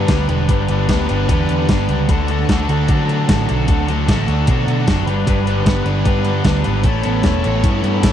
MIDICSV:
0, 0, Header, 1, 5, 480
1, 0, Start_track
1, 0, Key_signature, 2, "major"
1, 0, Tempo, 397351
1, 585, Time_signature, 4, 2, 24, 8
1, 9816, End_track
2, 0, Start_track
2, 0, Title_t, "Overdriven electric guitar"
2, 0, Program_c, 0, 29
2, 92, Note_on_c, 0, 55, 63
2, 103, Note_on_c, 0, 62, 77
2, 106, Note_on_c, 0, 59, 70
2, 120, Note_on_c, 0, 71, 79
2, 320, Note_off_c, 0, 71, 0
2, 333, Note_off_c, 0, 59, 0
2, 334, Note_on_c, 0, 71, 68
2, 347, Note_on_c, 0, 59, 67
2, 353, Note_off_c, 0, 62, 0
2, 358, Note_on_c, 0, 62, 54
2, 567, Note_off_c, 0, 55, 0
2, 581, Note_off_c, 0, 59, 0
2, 582, Note_on_c, 0, 55, 74
2, 585, Note_off_c, 0, 62, 0
2, 588, Note_off_c, 0, 71, 0
2, 590, Note_on_c, 0, 62, 89
2, 596, Note_on_c, 0, 59, 95
2, 603, Note_on_c, 0, 71, 84
2, 802, Note_off_c, 0, 71, 0
2, 817, Note_on_c, 0, 71, 56
2, 820, Note_off_c, 0, 59, 0
2, 834, Note_on_c, 0, 59, 48
2, 837, Note_off_c, 0, 62, 0
2, 842, Note_on_c, 0, 62, 47
2, 1050, Note_off_c, 0, 55, 0
2, 1064, Note_on_c, 0, 55, 61
2, 1066, Note_off_c, 0, 59, 0
2, 1072, Note_off_c, 0, 62, 0
2, 1075, Note_off_c, 0, 71, 0
2, 1077, Note_on_c, 0, 62, 72
2, 1080, Note_on_c, 0, 59, 81
2, 1090, Note_on_c, 0, 71, 72
2, 1293, Note_off_c, 0, 71, 0
2, 1304, Note_off_c, 0, 59, 0
2, 1308, Note_on_c, 0, 71, 61
2, 1319, Note_on_c, 0, 59, 50
2, 1329, Note_off_c, 0, 62, 0
2, 1334, Note_on_c, 0, 62, 51
2, 1529, Note_off_c, 0, 55, 0
2, 1543, Note_on_c, 0, 55, 80
2, 1546, Note_off_c, 0, 59, 0
2, 1546, Note_off_c, 0, 62, 0
2, 1550, Note_on_c, 0, 62, 80
2, 1560, Note_off_c, 0, 71, 0
2, 1560, Note_on_c, 0, 59, 78
2, 1574, Note_on_c, 0, 71, 90
2, 2024, Note_off_c, 0, 55, 0
2, 2038, Note_on_c, 0, 55, 66
2, 2045, Note_off_c, 0, 59, 0
2, 2049, Note_off_c, 0, 62, 0
2, 2054, Note_on_c, 0, 62, 67
2, 2055, Note_off_c, 0, 71, 0
2, 2060, Note_on_c, 0, 59, 68
2, 2069, Note_on_c, 0, 71, 74
2, 2269, Note_off_c, 0, 71, 0
2, 2282, Note_off_c, 0, 59, 0
2, 2284, Note_on_c, 0, 71, 74
2, 2296, Note_on_c, 0, 59, 57
2, 2308, Note_off_c, 0, 62, 0
2, 2313, Note_on_c, 0, 62, 56
2, 2503, Note_off_c, 0, 55, 0
2, 2506, Note_off_c, 0, 71, 0
2, 2512, Note_off_c, 0, 59, 0
2, 2519, Note_on_c, 0, 50, 81
2, 2521, Note_off_c, 0, 62, 0
2, 2526, Note_on_c, 0, 62, 76
2, 2535, Note_on_c, 0, 66, 89
2, 2544, Note_on_c, 0, 69, 97
2, 2752, Note_off_c, 0, 69, 0
2, 2757, Note_on_c, 0, 69, 58
2, 2762, Note_off_c, 0, 66, 0
2, 2767, Note_on_c, 0, 66, 54
2, 2774, Note_off_c, 0, 62, 0
2, 2779, Note_on_c, 0, 62, 45
2, 3001, Note_off_c, 0, 50, 0
2, 3006, Note_on_c, 0, 50, 66
2, 3013, Note_off_c, 0, 62, 0
2, 3017, Note_on_c, 0, 62, 65
2, 3018, Note_off_c, 0, 66, 0
2, 3023, Note_on_c, 0, 66, 73
2, 3027, Note_off_c, 0, 69, 0
2, 3031, Note_on_c, 0, 69, 69
2, 3232, Note_off_c, 0, 69, 0
2, 3246, Note_off_c, 0, 66, 0
2, 3247, Note_on_c, 0, 69, 62
2, 3261, Note_on_c, 0, 66, 58
2, 3267, Note_off_c, 0, 62, 0
2, 3271, Note_on_c, 0, 62, 49
2, 3473, Note_off_c, 0, 50, 0
2, 3487, Note_on_c, 0, 50, 70
2, 3490, Note_off_c, 0, 66, 0
2, 3492, Note_off_c, 0, 62, 0
2, 3494, Note_off_c, 0, 69, 0
2, 3497, Note_on_c, 0, 62, 82
2, 3505, Note_on_c, 0, 66, 86
2, 3509, Note_on_c, 0, 69, 79
2, 3948, Note_off_c, 0, 50, 0
2, 3962, Note_off_c, 0, 66, 0
2, 3962, Note_on_c, 0, 50, 74
2, 3963, Note_off_c, 0, 62, 0
2, 3968, Note_on_c, 0, 62, 68
2, 3973, Note_off_c, 0, 69, 0
2, 3976, Note_on_c, 0, 66, 74
2, 3987, Note_on_c, 0, 69, 75
2, 4181, Note_off_c, 0, 69, 0
2, 4195, Note_off_c, 0, 66, 0
2, 4195, Note_on_c, 0, 69, 79
2, 4210, Note_on_c, 0, 66, 62
2, 4212, Note_off_c, 0, 62, 0
2, 4217, Note_on_c, 0, 62, 56
2, 4421, Note_off_c, 0, 50, 0
2, 4435, Note_on_c, 0, 50, 79
2, 4438, Note_off_c, 0, 66, 0
2, 4440, Note_off_c, 0, 62, 0
2, 4440, Note_off_c, 0, 69, 0
2, 4444, Note_on_c, 0, 62, 92
2, 4452, Note_on_c, 0, 66, 84
2, 4455, Note_on_c, 0, 69, 94
2, 4671, Note_off_c, 0, 69, 0
2, 4685, Note_on_c, 0, 69, 60
2, 4687, Note_off_c, 0, 66, 0
2, 4701, Note_on_c, 0, 66, 60
2, 4705, Note_off_c, 0, 62, 0
2, 4710, Note_on_c, 0, 62, 47
2, 4900, Note_off_c, 0, 50, 0
2, 4915, Note_on_c, 0, 50, 64
2, 4920, Note_off_c, 0, 66, 0
2, 4921, Note_off_c, 0, 62, 0
2, 4926, Note_on_c, 0, 62, 71
2, 4931, Note_off_c, 0, 69, 0
2, 4935, Note_on_c, 0, 66, 76
2, 4946, Note_on_c, 0, 69, 74
2, 5147, Note_off_c, 0, 69, 0
2, 5160, Note_off_c, 0, 66, 0
2, 5162, Note_on_c, 0, 69, 60
2, 5175, Note_on_c, 0, 66, 59
2, 5180, Note_off_c, 0, 62, 0
2, 5185, Note_on_c, 0, 62, 51
2, 5387, Note_off_c, 0, 50, 0
2, 5397, Note_off_c, 0, 62, 0
2, 5401, Note_on_c, 0, 50, 75
2, 5407, Note_off_c, 0, 66, 0
2, 5411, Note_off_c, 0, 69, 0
2, 5412, Note_on_c, 0, 62, 76
2, 5421, Note_on_c, 0, 66, 88
2, 5426, Note_on_c, 0, 69, 76
2, 5862, Note_off_c, 0, 50, 0
2, 5877, Note_off_c, 0, 62, 0
2, 5877, Note_on_c, 0, 50, 70
2, 5885, Note_off_c, 0, 66, 0
2, 5892, Note_off_c, 0, 69, 0
2, 5892, Note_on_c, 0, 62, 73
2, 5900, Note_on_c, 0, 66, 77
2, 5906, Note_on_c, 0, 69, 80
2, 6105, Note_off_c, 0, 50, 0
2, 6105, Note_off_c, 0, 69, 0
2, 6110, Note_on_c, 0, 71, 90
2, 6112, Note_off_c, 0, 62, 0
2, 6116, Note_off_c, 0, 66, 0
2, 6121, Note_on_c, 0, 59, 70
2, 6129, Note_on_c, 0, 62, 70
2, 6139, Note_on_c, 0, 55, 78
2, 6331, Note_off_c, 0, 55, 0
2, 6342, Note_off_c, 0, 62, 0
2, 6346, Note_on_c, 0, 55, 92
2, 6357, Note_on_c, 0, 62, 88
2, 6360, Note_off_c, 0, 59, 0
2, 6365, Note_on_c, 0, 59, 83
2, 6373, Note_off_c, 0, 71, 0
2, 6378, Note_on_c, 0, 71, 95
2, 6576, Note_off_c, 0, 71, 0
2, 6581, Note_on_c, 0, 71, 70
2, 6590, Note_off_c, 0, 59, 0
2, 6594, Note_off_c, 0, 62, 0
2, 6595, Note_on_c, 0, 59, 58
2, 6609, Note_on_c, 0, 62, 51
2, 6803, Note_off_c, 0, 55, 0
2, 6812, Note_off_c, 0, 62, 0
2, 6818, Note_on_c, 0, 55, 65
2, 6826, Note_on_c, 0, 62, 71
2, 6829, Note_off_c, 0, 59, 0
2, 6834, Note_on_c, 0, 59, 75
2, 6838, Note_off_c, 0, 71, 0
2, 6843, Note_on_c, 0, 71, 81
2, 7053, Note_off_c, 0, 71, 0
2, 7058, Note_on_c, 0, 71, 61
2, 7067, Note_off_c, 0, 59, 0
2, 7070, Note_off_c, 0, 62, 0
2, 7072, Note_on_c, 0, 59, 60
2, 7085, Note_on_c, 0, 62, 55
2, 7286, Note_off_c, 0, 55, 0
2, 7295, Note_off_c, 0, 62, 0
2, 7301, Note_on_c, 0, 55, 76
2, 7309, Note_on_c, 0, 62, 74
2, 7310, Note_off_c, 0, 59, 0
2, 7315, Note_on_c, 0, 59, 80
2, 7320, Note_off_c, 0, 71, 0
2, 7325, Note_on_c, 0, 71, 94
2, 7770, Note_off_c, 0, 55, 0
2, 7780, Note_off_c, 0, 62, 0
2, 7785, Note_on_c, 0, 55, 70
2, 7794, Note_off_c, 0, 59, 0
2, 7794, Note_on_c, 0, 62, 76
2, 7799, Note_on_c, 0, 59, 75
2, 7804, Note_off_c, 0, 71, 0
2, 7809, Note_on_c, 0, 71, 71
2, 8011, Note_off_c, 0, 71, 0
2, 8015, Note_on_c, 0, 71, 65
2, 8023, Note_off_c, 0, 62, 0
2, 8027, Note_off_c, 0, 59, 0
2, 8032, Note_on_c, 0, 59, 69
2, 8038, Note_on_c, 0, 62, 58
2, 8253, Note_off_c, 0, 55, 0
2, 8256, Note_on_c, 0, 45, 87
2, 8260, Note_off_c, 0, 62, 0
2, 8262, Note_on_c, 0, 57, 88
2, 8269, Note_off_c, 0, 59, 0
2, 8269, Note_on_c, 0, 61, 85
2, 8271, Note_off_c, 0, 71, 0
2, 8274, Note_on_c, 0, 64, 78
2, 8275, Note_on_c, 0, 69, 96
2, 8479, Note_off_c, 0, 69, 0
2, 8493, Note_on_c, 0, 69, 67
2, 8498, Note_off_c, 0, 64, 0
2, 8506, Note_off_c, 0, 61, 0
2, 8512, Note_on_c, 0, 64, 59
2, 8521, Note_on_c, 0, 61, 49
2, 8719, Note_off_c, 0, 57, 0
2, 8733, Note_on_c, 0, 57, 64
2, 8736, Note_off_c, 0, 61, 0
2, 8741, Note_off_c, 0, 45, 0
2, 8742, Note_off_c, 0, 64, 0
2, 8750, Note_off_c, 0, 69, 0
2, 8751, Note_on_c, 0, 61, 75
2, 8757, Note_on_c, 0, 64, 73
2, 8764, Note_on_c, 0, 69, 65
2, 8968, Note_off_c, 0, 69, 0
2, 8982, Note_off_c, 0, 64, 0
2, 8983, Note_on_c, 0, 69, 60
2, 8988, Note_off_c, 0, 61, 0
2, 8996, Note_on_c, 0, 64, 52
2, 9002, Note_on_c, 0, 61, 47
2, 9215, Note_off_c, 0, 57, 0
2, 9223, Note_off_c, 0, 61, 0
2, 9224, Note_on_c, 0, 45, 78
2, 9229, Note_off_c, 0, 64, 0
2, 9229, Note_on_c, 0, 57, 78
2, 9233, Note_off_c, 0, 69, 0
2, 9238, Note_on_c, 0, 61, 90
2, 9243, Note_on_c, 0, 64, 89
2, 9247, Note_on_c, 0, 69, 89
2, 9682, Note_off_c, 0, 57, 0
2, 9686, Note_off_c, 0, 61, 0
2, 9692, Note_off_c, 0, 64, 0
2, 9696, Note_on_c, 0, 57, 73
2, 9700, Note_on_c, 0, 61, 74
2, 9706, Note_off_c, 0, 69, 0
2, 9706, Note_on_c, 0, 64, 69
2, 9720, Note_on_c, 0, 69, 76
2, 9816, Note_off_c, 0, 45, 0
2, 9816, Note_off_c, 0, 57, 0
2, 9816, Note_off_c, 0, 61, 0
2, 9816, Note_off_c, 0, 64, 0
2, 9816, Note_off_c, 0, 69, 0
2, 9816, End_track
3, 0, Start_track
3, 0, Title_t, "Overdriven electric guitar"
3, 0, Program_c, 1, 29
3, 0, Note_on_c, 1, 50, 63
3, 0, Note_on_c, 1, 59, 69
3, 0, Note_on_c, 1, 62, 65
3, 106, Note_on_c, 1, 55, 58
3, 337, Note_off_c, 1, 50, 0
3, 346, Note_off_c, 1, 59, 0
3, 352, Note_on_c, 1, 50, 58
3, 597, Note_on_c, 1, 43, 59
3, 831, Note_off_c, 1, 50, 0
3, 846, Note_on_c, 1, 50, 67
3, 1081, Note_on_c, 1, 59, 66
3, 1311, Note_off_c, 1, 55, 0
3, 1318, Note_off_c, 1, 62, 0
3, 1323, Note_on_c, 1, 62, 64
3, 1574, Note_on_c, 1, 55, 63
3, 1798, Note_off_c, 1, 43, 0
3, 1803, Note_off_c, 1, 50, 0
3, 1817, Note_on_c, 1, 50, 61
3, 2053, Note_off_c, 1, 55, 0
3, 2068, Note_on_c, 1, 55, 59
3, 2280, Note_off_c, 1, 50, 0
3, 2281, Note_off_c, 1, 59, 0
3, 2295, Note_on_c, 1, 50, 56
3, 2520, Note_off_c, 1, 50, 0
3, 2533, Note_off_c, 1, 55, 0
3, 2534, Note_on_c, 1, 50, 66
3, 2775, Note_off_c, 1, 50, 0
3, 2790, Note_on_c, 1, 50, 66
3, 3026, Note_on_c, 1, 57, 64
3, 3256, Note_off_c, 1, 62, 0
3, 3261, Note_on_c, 1, 62, 65
3, 3502, Note_on_c, 1, 54, 65
3, 3727, Note_off_c, 1, 50, 0
3, 3741, Note_on_c, 1, 50, 60
3, 3971, Note_off_c, 1, 54, 0
3, 3986, Note_on_c, 1, 54, 56
3, 4211, Note_off_c, 1, 50, 0
3, 4216, Note_off_c, 1, 57, 0
3, 4226, Note_on_c, 1, 50, 54
3, 4451, Note_off_c, 1, 50, 0
3, 4465, Note_on_c, 1, 50, 65
3, 4691, Note_off_c, 1, 50, 0
3, 4706, Note_on_c, 1, 50, 71
3, 4938, Note_on_c, 1, 57, 61
3, 5172, Note_off_c, 1, 62, 0
3, 5175, Note_off_c, 1, 54, 0
3, 5177, Note_on_c, 1, 62, 60
3, 5420, Note_on_c, 1, 54, 67
3, 5634, Note_off_c, 1, 50, 0
3, 5648, Note_on_c, 1, 50, 66
3, 5877, Note_off_c, 1, 54, 0
3, 5891, Note_on_c, 1, 54, 60
3, 6125, Note_off_c, 1, 50, 0
3, 6126, Note_off_c, 1, 54, 0
3, 6129, Note_off_c, 1, 62, 0
3, 6130, Note_off_c, 1, 57, 0
3, 6136, Note_on_c, 1, 43, 60
3, 6361, Note_off_c, 1, 43, 0
3, 6376, Note_on_c, 1, 43, 68
3, 6612, Note_on_c, 1, 50, 69
3, 6848, Note_on_c, 1, 59, 67
3, 7081, Note_on_c, 1, 62, 69
3, 7318, Note_on_c, 1, 55, 70
3, 7537, Note_off_c, 1, 50, 0
3, 7551, Note_on_c, 1, 50, 66
3, 7564, Note_off_c, 1, 43, 0
3, 7782, Note_off_c, 1, 55, 0
3, 7797, Note_on_c, 1, 55, 61
3, 8018, Note_off_c, 1, 50, 0
3, 8032, Note_on_c, 1, 50, 54
3, 8263, Note_off_c, 1, 50, 0
3, 8268, Note_on_c, 1, 57, 71
3, 8273, Note_off_c, 1, 55, 0
3, 8274, Note_off_c, 1, 62, 0
3, 8305, Note_off_c, 1, 59, 0
3, 8504, Note_on_c, 1, 59, 74
3, 8747, Note_on_c, 1, 69, 62
3, 8992, Note_on_c, 1, 73, 69
3, 9229, Note_on_c, 1, 64, 71
3, 9450, Note_off_c, 1, 59, 0
3, 9461, Note_off_c, 1, 57, 0
3, 9464, Note_on_c, 1, 59, 60
3, 9694, Note_off_c, 1, 64, 0
3, 9709, Note_on_c, 1, 64, 64
3, 9816, Note_off_c, 1, 59, 0
3, 9816, Note_off_c, 1, 64, 0
3, 9816, Note_off_c, 1, 69, 0
3, 9816, Note_off_c, 1, 73, 0
3, 9816, End_track
4, 0, Start_track
4, 0, Title_t, "Picked electric bass"
4, 0, Program_c, 2, 34
4, 111, Note_on_c, 2, 38, 87
4, 318, Note_off_c, 2, 38, 0
4, 332, Note_on_c, 2, 28, 79
4, 549, Note_off_c, 2, 28, 0
4, 593, Note_on_c, 2, 31, 78
4, 801, Note_off_c, 2, 31, 0
4, 842, Note_on_c, 2, 31, 76
4, 1047, Note_off_c, 2, 31, 0
4, 1070, Note_on_c, 2, 38, 75
4, 1280, Note_off_c, 2, 38, 0
4, 1325, Note_on_c, 2, 31, 79
4, 1530, Note_off_c, 2, 31, 0
4, 1554, Note_on_c, 2, 40, 76
4, 1764, Note_off_c, 2, 40, 0
4, 1798, Note_on_c, 2, 40, 76
4, 2007, Note_off_c, 2, 40, 0
4, 2042, Note_on_c, 2, 31, 81
4, 2250, Note_off_c, 2, 31, 0
4, 2275, Note_on_c, 2, 37, 76
4, 2486, Note_off_c, 2, 37, 0
4, 2528, Note_on_c, 2, 38, 76
4, 2945, Note_off_c, 2, 38, 0
4, 3014, Note_on_c, 2, 38, 74
4, 3218, Note_off_c, 2, 38, 0
4, 3248, Note_on_c, 2, 38, 83
4, 3455, Note_off_c, 2, 38, 0
4, 3491, Note_on_c, 2, 50, 78
4, 3908, Note_off_c, 2, 50, 0
4, 3973, Note_on_c, 2, 33, 81
4, 4179, Note_off_c, 2, 33, 0
4, 4229, Note_on_c, 2, 35, 74
4, 4428, Note_off_c, 2, 35, 0
4, 4453, Note_on_c, 2, 38, 86
4, 4659, Note_off_c, 2, 38, 0
4, 4700, Note_on_c, 2, 38, 87
4, 4903, Note_off_c, 2, 38, 0
4, 4932, Note_on_c, 2, 33, 79
4, 5138, Note_off_c, 2, 33, 0
4, 5163, Note_on_c, 2, 38, 84
4, 5373, Note_off_c, 2, 38, 0
4, 5412, Note_on_c, 2, 47, 81
4, 5618, Note_off_c, 2, 47, 0
4, 5643, Note_on_c, 2, 47, 86
4, 5853, Note_off_c, 2, 47, 0
4, 5891, Note_on_c, 2, 30, 85
4, 6097, Note_off_c, 2, 30, 0
4, 6109, Note_on_c, 2, 31, 80
4, 6324, Note_off_c, 2, 31, 0
4, 6369, Note_on_c, 2, 31, 85
4, 6785, Note_off_c, 2, 31, 0
4, 6834, Note_on_c, 2, 31, 77
4, 7046, Note_off_c, 2, 31, 0
4, 7062, Note_on_c, 2, 31, 82
4, 7279, Note_off_c, 2, 31, 0
4, 7320, Note_on_c, 2, 43, 84
4, 7737, Note_off_c, 2, 43, 0
4, 7788, Note_on_c, 2, 38, 78
4, 8001, Note_off_c, 2, 38, 0
4, 8047, Note_on_c, 2, 32, 81
4, 8251, Note_off_c, 2, 32, 0
4, 8258, Note_on_c, 2, 33, 84
4, 8473, Note_off_c, 2, 33, 0
4, 8525, Note_on_c, 2, 33, 84
4, 8728, Note_off_c, 2, 33, 0
4, 8750, Note_on_c, 2, 28, 77
4, 8959, Note_off_c, 2, 28, 0
4, 9000, Note_on_c, 2, 33, 84
4, 9203, Note_off_c, 2, 33, 0
4, 9224, Note_on_c, 2, 43, 79
4, 9433, Note_off_c, 2, 43, 0
4, 9462, Note_on_c, 2, 43, 87
4, 9671, Note_off_c, 2, 43, 0
4, 9698, Note_on_c, 2, 33, 80
4, 9816, Note_off_c, 2, 33, 0
4, 9816, End_track
5, 0, Start_track
5, 0, Title_t, "Drums"
5, 101, Note_on_c, 9, 42, 89
5, 103, Note_on_c, 9, 36, 116
5, 107, Note_on_c, 9, 38, 114
5, 221, Note_off_c, 9, 42, 0
5, 224, Note_off_c, 9, 36, 0
5, 227, Note_off_c, 9, 38, 0
5, 348, Note_on_c, 9, 42, 64
5, 469, Note_off_c, 9, 42, 0
5, 589, Note_on_c, 9, 36, 111
5, 591, Note_on_c, 9, 42, 81
5, 710, Note_off_c, 9, 36, 0
5, 712, Note_off_c, 9, 42, 0
5, 828, Note_on_c, 9, 42, 67
5, 949, Note_off_c, 9, 42, 0
5, 1072, Note_on_c, 9, 42, 76
5, 1073, Note_on_c, 9, 36, 96
5, 1079, Note_on_c, 9, 38, 97
5, 1193, Note_off_c, 9, 42, 0
5, 1194, Note_off_c, 9, 36, 0
5, 1199, Note_off_c, 9, 38, 0
5, 1317, Note_on_c, 9, 42, 53
5, 1438, Note_off_c, 9, 42, 0
5, 1557, Note_on_c, 9, 36, 107
5, 1561, Note_on_c, 9, 42, 79
5, 1678, Note_off_c, 9, 36, 0
5, 1682, Note_off_c, 9, 42, 0
5, 1800, Note_on_c, 9, 42, 59
5, 1920, Note_off_c, 9, 42, 0
5, 2038, Note_on_c, 9, 42, 78
5, 2039, Note_on_c, 9, 36, 107
5, 2044, Note_on_c, 9, 38, 103
5, 2158, Note_off_c, 9, 42, 0
5, 2160, Note_off_c, 9, 36, 0
5, 2164, Note_off_c, 9, 38, 0
5, 2281, Note_on_c, 9, 42, 58
5, 2402, Note_off_c, 9, 42, 0
5, 2522, Note_on_c, 9, 36, 104
5, 2523, Note_on_c, 9, 42, 75
5, 2643, Note_off_c, 9, 36, 0
5, 2644, Note_off_c, 9, 42, 0
5, 2758, Note_on_c, 9, 42, 60
5, 2878, Note_off_c, 9, 42, 0
5, 2885, Note_on_c, 9, 38, 29
5, 3006, Note_off_c, 9, 38, 0
5, 3006, Note_on_c, 9, 36, 93
5, 3009, Note_on_c, 9, 42, 66
5, 3015, Note_on_c, 9, 38, 99
5, 3127, Note_off_c, 9, 36, 0
5, 3130, Note_off_c, 9, 42, 0
5, 3135, Note_off_c, 9, 38, 0
5, 3135, Note_on_c, 9, 38, 32
5, 3252, Note_on_c, 9, 42, 55
5, 3256, Note_off_c, 9, 38, 0
5, 3372, Note_off_c, 9, 42, 0
5, 3484, Note_on_c, 9, 42, 82
5, 3487, Note_on_c, 9, 36, 110
5, 3605, Note_off_c, 9, 42, 0
5, 3608, Note_off_c, 9, 36, 0
5, 3737, Note_on_c, 9, 42, 51
5, 3858, Note_off_c, 9, 42, 0
5, 3972, Note_on_c, 9, 36, 108
5, 3972, Note_on_c, 9, 42, 89
5, 3978, Note_on_c, 9, 38, 104
5, 4092, Note_off_c, 9, 36, 0
5, 4093, Note_off_c, 9, 42, 0
5, 4099, Note_off_c, 9, 38, 0
5, 4214, Note_on_c, 9, 42, 58
5, 4334, Note_off_c, 9, 42, 0
5, 4445, Note_on_c, 9, 42, 84
5, 4451, Note_on_c, 9, 36, 112
5, 4566, Note_off_c, 9, 42, 0
5, 4571, Note_off_c, 9, 36, 0
5, 4693, Note_on_c, 9, 42, 65
5, 4813, Note_off_c, 9, 42, 0
5, 4934, Note_on_c, 9, 36, 96
5, 4936, Note_on_c, 9, 42, 82
5, 4942, Note_on_c, 9, 38, 94
5, 5055, Note_off_c, 9, 36, 0
5, 5056, Note_off_c, 9, 42, 0
5, 5062, Note_off_c, 9, 38, 0
5, 5171, Note_on_c, 9, 42, 51
5, 5292, Note_off_c, 9, 42, 0
5, 5403, Note_on_c, 9, 42, 85
5, 5412, Note_on_c, 9, 36, 110
5, 5524, Note_off_c, 9, 42, 0
5, 5532, Note_off_c, 9, 36, 0
5, 5655, Note_on_c, 9, 42, 55
5, 5776, Note_off_c, 9, 42, 0
5, 5889, Note_on_c, 9, 42, 82
5, 5891, Note_on_c, 9, 36, 104
5, 5895, Note_on_c, 9, 38, 113
5, 6010, Note_off_c, 9, 42, 0
5, 6012, Note_off_c, 9, 36, 0
5, 6016, Note_off_c, 9, 38, 0
5, 6131, Note_on_c, 9, 42, 58
5, 6252, Note_off_c, 9, 42, 0
5, 6368, Note_on_c, 9, 36, 103
5, 6371, Note_on_c, 9, 42, 81
5, 6488, Note_off_c, 9, 36, 0
5, 6492, Note_off_c, 9, 42, 0
5, 6609, Note_on_c, 9, 42, 64
5, 6730, Note_off_c, 9, 42, 0
5, 6841, Note_on_c, 9, 36, 94
5, 6841, Note_on_c, 9, 42, 72
5, 6847, Note_on_c, 9, 38, 102
5, 6961, Note_off_c, 9, 36, 0
5, 6962, Note_off_c, 9, 42, 0
5, 6967, Note_off_c, 9, 38, 0
5, 6967, Note_on_c, 9, 38, 31
5, 7076, Note_on_c, 9, 42, 49
5, 7088, Note_off_c, 9, 38, 0
5, 7197, Note_off_c, 9, 42, 0
5, 7313, Note_on_c, 9, 42, 76
5, 7315, Note_on_c, 9, 36, 104
5, 7434, Note_off_c, 9, 42, 0
5, 7436, Note_off_c, 9, 36, 0
5, 7545, Note_on_c, 9, 42, 54
5, 7666, Note_off_c, 9, 42, 0
5, 7786, Note_on_c, 9, 42, 85
5, 7790, Note_on_c, 9, 36, 100
5, 7792, Note_on_c, 9, 38, 106
5, 7907, Note_off_c, 9, 42, 0
5, 7910, Note_off_c, 9, 36, 0
5, 7913, Note_off_c, 9, 38, 0
5, 8025, Note_on_c, 9, 42, 59
5, 8146, Note_off_c, 9, 42, 0
5, 8257, Note_on_c, 9, 42, 79
5, 8263, Note_on_c, 9, 36, 103
5, 8378, Note_off_c, 9, 42, 0
5, 8383, Note_off_c, 9, 36, 0
5, 8498, Note_on_c, 9, 42, 70
5, 8618, Note_off_c, 9, 42, 0
5, 8738, Note_on_c, 9, 42, 71
5, 8742, Note_on_c, 9, 36, 91
5, 8744, Note_on_c, 9, 38, 89
5, 8859, Note_off_c, 9, 42, 0
5, 8863, Note_off_c, 9, 36, 0
5, 8865, Note_off_c, 9, 38, 0
5, 8868, Note_on_c, 9, 38, 28
5, 8988, Note_off_c, 9, 38, 0
5, 8990, Note_on_c, 9, 42, 53
5, 9111, Note_off_c, 9, 42, 0
5, 9225, Note_on_c, 9, 36, 106
5, 9226, Note_on_c, 9, 42, 84
5, 9346, Note_off_c, 9, 36, 0
5, 9347, Note_off_c, 9, 42, 0
5, 9470, Note_on_c, 9, 42, 58
5, 9591, Note_off_c, 9, 42, 0
5, 9703, Note_on_c, 9, 36, 101
5, 9704, Note_on_c, 9, 42, 85
5, 9710, Note_on_c, 9, 38, 107
5, 9816, Note_off_c, 9, 36, 0
5, 9816, Note_off_c, 9, 38, 0
5, 9816, Note_off_c, 9, 42, 0
5, 9816, End_track
0, 0, End_of_file